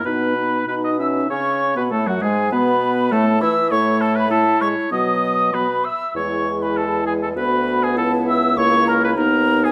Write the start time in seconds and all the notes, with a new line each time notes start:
0.04 B2 B3 D#4 B4 B5
0.36 B3 D#4
0.68 B2 D#4 B4 B5
0.84 D#5 D#6
0.99 C#4 D#4 E5 E6
1.30 C#3 C#4 C#5 C#6
1.76 B2 B3 B4 B5
1.91 A2 A3 A4 A5
2.06 F#2 F#3 F#4 F#5
2.22 G#2 G#3 G#4 G#5
2.52 B2 B3 B4 B5
3.11 A2 A3 A4 A5
3.41 E3 E4 E5 E6
3.71 A2 A3 E4 C#5 C#6
4.01 A4 A5
4.16 B4 B5
4.30 A3 E4 A4 A5
4.61 G#3 C#5 C#6
4.91 B2 F#3 B3 D#5 D#6
5.53 F#3 B3 B4 B5
5.84 E5 E6
6.15 E2 G#3 E4 C#5 C#6
6.62 B4 B5
6.77 A4 A5
7.06 G#4 G#5
7.22 A4 A5
7.36 D2 B3 F#4 B4 B5
7.83 G#4 G#5
7.97 C#2 E4 A4 A5
8.28 E5 E6
8.57 C#2 A#3 E4 C#5 C#6
8.87 A#4 A#5
9.03 B4 B5
9.17 D#2 B3 D#4 A#4 A#5
9.64 G#4 G#5